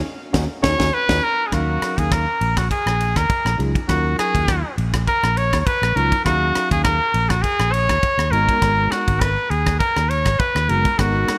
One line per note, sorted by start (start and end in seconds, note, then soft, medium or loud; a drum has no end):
0.33 0.46 D#2 medium
0.33 0.44 C#4 medium
0.33 0.44 D#4 medium
0.33 0.44 F#4 loud
0.33 kick medium
0.33 snare medium
0.62 0.75 D#2 medium
0.62 0.73 C#4 loud
0.62 0.73 D#4 medium
0.62 0.73 F#4 loud
0.62 0.95 C#5 loud
0.62 kick loud
0.62 snare loud
0.78 0.90 D#2 medium
0.78 0.88 C#4 medium
0.78 0.88 D#4 medium
0.78 0.88 F#4 medium
0.78 kick medium
0.78 snare medium
0.94 1.25 B4 loud
1.09 1.19 D#2 medium
1.09 1.18 C#4 loud
1.09 1.18 D#4 medium
1.09 1.18 F#4 medium
1.09 kick medium
1.09 snare medium
1.24 1.48 A#4 loud
1.47 1.55 G#4 medium
1.52 1.80 D#2 medium
1.52 2.24 F#3 medium
1.52 2.24 C#4 medium
1.52 2.24 D#4 medium
1.52 2.01 F#4 medium
1.52 2.24 A#4 medium
1.52 2.24 F5 medium
1.52 kick medium
1.52 cross-stick medium
1.52 ride medium
1.82 muted fretless electric bass stroke soft
1.82 cross-stick medium
1.82 ride medium
1.98 2.25 D#2 medium
1.98 2.14 G#4 medium
1.98 kick medium
1.98 ride medium
2.12 2.59 A#4 medium
2.12 kick loud
2.12 cross-stick medium
2.12 ride medium
2.41 2.68 A#1 medium
2.41 ride medium
2.57 2.70 F#4 medium
2.57 kick medium
2.57 cross-stick medium
2.57 ride medium
2.71 3.18 G#4 medium
2.71 kick medium
2.71 ride medium
2.86 3.14 A#1 medium
2.86 cross-stick medium
3.00 ride medium
3.16 3.29 D#2 medium
3.16 3.59 A#4 medium
3.16 kick medium
3.16 cross-stick medium
3.16 ride medium
3.30 kick medium
3.30 ride medium
3.45 3.58 A#1 medium
3.45 cross-stick medium
3.58 3.74 C#2 medium
3.58 3.77 F#3 medium
3.58 3.77 C#4 medium
3.58 3.77 D#4 medium
3.58 3.78 F4 medium
3.58 3.78 G#4 medium
3.58 ride medium
3.75 kick medium
3.75 ride medium
3.87 4.16 D#2 medium
3.87 4.60 F#3 medium
3.87 4.60 C#4 medium
3.87 4.60 D#4 medium
3.87 4.60 F4 medium
3.87 4.16 F#4 medium
3.87 4.61 A#4 medium
3.87 kick medium
3.87 cross-stick medium
3.87 ride medium
4.19 4.74 G#4 loud
4.19 muted fretless electric bass stroke soft
4.19 cross-stick medium
4.19 ride medium
4.35 4.62 D#2 medium
4.35 kick medium
4.35 ride medium
4.48 kick loud
4.48 cross-stick medium
4.48 ride medium
4.78 5.05 A#1 medium
4.78 ride medium
4.94 kick medium
4.94 cross-stick medium
4.94 ride medium
5.08 5.39 A#4 medium
5.08 kick medium
5.08 ride soft
5.23 5.50 A#1 medium
5.23 cross-stick medium
5.37 5.60 C#5 medium
5.37 ride medium
5.53 5.65 D#2 medium
5.53 kick medium
5.53 cross-stick medium
5.53 ride medium
5.60 5.68 C#5 medium
5.66 5.97 B4 medium
5.66 muted fretless electric bass stroke soft
5.66 kick loud
5.66 ride medium
5.82 5.95 A#1 medium
5.82 cross-stick medium
5.95 6.11 C#2 medium
5.95 6.14 F#3 medium
5.95 6.14 C#4 medium
5.95 6.14 D#4 medium
5.95 6.15 F4 medium
5.95 6.24 A#4 medium
5.95 6.15 A#4 medium
5.95 ride medium
6.12 kick medium
6.12 ride medium
6.25 6.53 D#2 medium
6.25 6.97 F#3 medium
6.25 6.97 C#4 medium
6.25 6.97 D#4 medium
6.25 6.67 F#4 medium
6.25 6.98 G#4 medium
6.25 6.98 F5 medium
6.25 kick medium
6.25 cross-stick medium
6.25 ride medium
6.55 muted fretless electric bass stroke soft
6.55 cross-stick medium
6.55 ride medium
6.71 6.99 D#2 medium
6.71 6.83 G#4 medium
6.71 kick medium
6.71 ride medium
6.84 7.31 A#4 medium
6.84 kick loud
6.84 cross-stick medium
6.84 ride medium
7.14 7.42 A#1 medium
7.14 ride medium
7.29 7.44 F#4 medium
7.29 kick medium
7.29 cross-stick medium
7.29 ride medium
7.42 7.74 G#4 medium
7.42 kick medium
7.42 ride medium
7.59 7.87 A#1 medium
7.59 cross-stick medium
7.72 8.33 C#5 loud
7.72 ride medium
7.89 8.02 D#2 medium
7.89 kick medium
7.89 cross-stick medium
7.89 ride medium
8.03 muted fretless electric bass stroke soft
8.03 kick medium
8.03 ride medium
8.18 8.31 D#2 medium
8.18 cross-stick medium
8.31 8.47 G#1 medium
8.31 9.27 G#3 medium
8.31 9.27 B3 medium
8.31 9.28 D#4 medium
8.31 9.28 F#4 medium
8.31 8.93 A#4 loud
8.31 9.28 A#4 medium
8.31 ride medium
8.49 kick medium
8.49 ride medium
8.62 8.90 G#1 medium
8.62 kick medium
8.62 cross-stick medium
8.62 ride medium
8.91 9.22 F#4 medium
8.91 cross-stick medium
8.91 ride medium
9.08 9.35 G#1 medium
9.08 kick medium
9.08 ride medium
9.20 9.52 B4 medium
9.20 kick loud
9.20 cross-stick medium
9.20 ride medium
9.50 9.78 D#2 medium
9.50 9.79 G#4 medium
9.50 ride medium
9.66 kick medium
9.66 cross-stick medium
9.66 ride medium
9.79 10.11 A#4 medium
9.79 kick medium
9.79 ride medium
9.96 10.24 D#2 medium
9.96 cross-stick medium
10.10 10.41 C#5 medium
10.10 ride medium
10.26 10.39 G#1 medium
10.26 kick medium
10.26 cross-stick medium
10.26 ride medium
10.39 10.71 B4 medium
10.39 kick loud
10.39 ride medium
10.55 10.68 D#2 medium
10.55 cross-stick medium
10.68 10.84 F#1 medium
10.68 10.88 G#3 medium
10.68 10.88 B3 medium
10.68 10.88 D#4 medium
10.68 10.88 F#4 medium
10.68 11.01 A#4 medium
10.68 10.88 A#4 medium
10.68 ride medium
10.85 kick medium
10.85 ride medium
10.98 11.26 G#1 medium
10.98 11.38 G#3 medium
10.98 11.38 B3 medium
10.98 11.38 D#4 medium
10.98 11.38 F#4 medium
10.98 11.38 A#4 medium
10.98 kick medium
10.98 cross-stick medium
10.98 ride medium
11.28 muted fretless electric bass stroke soft
11.28 cross-stick medium
11.28 ride medium